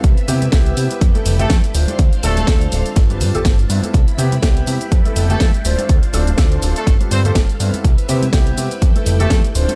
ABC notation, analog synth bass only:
X:1
M:4/4
L:1/16
Q:"Swing 16ths" 1/4=123
K:C
V:1 name="Analog synth bass" clef=bass
C,, z C,2 C,,2 C, z F,, z F,,,2 F,, z D,,, z | D,, z D,,,2 D,,2 D,,, z G,,,2 G,, G,,, G,,,2 G,, z | C,, z C,2 C,,2 C, z F,, z F,,,2 F,, z D,,, z | D,, z D,,,2 D,,2 D,,, z G,,, z G,,2 G,,, z G,, z |
C,, z C,2 C,,2 C, z F,, z F,,,2 F,, z D,,, z |]